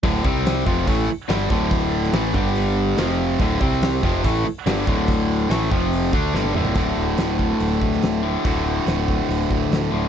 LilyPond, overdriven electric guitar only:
\new Staff \with { instrumentName = "Overdriven electric guitar" } { \clef bass \time 4/4 \key c \lydian \tempo 4 = 143 <d, a, d>8 <c g c'>4 <f, c f>8 <a, e a>8 r8 <g, d g>8 <d, a, d>8~ | <d, a, d>4 <a, e a>8 <g, d g>4. <f, c f>4 | <d, a, d>8 <c g c'>4 <f, c f>8 <a, e a>8 r8 <g, d g>8 <d, a, d>8~ | <d, a, d>4 <a, e a>8 <f, c f>4 <d a d'>8 <g, d g>8 <d, a, d>8 |
<d, a, d>2.~ <d, a, d>8 <d, a, d>8 | <d, a, d>2.~ <d, a, d>8 <d, a, d>8 | }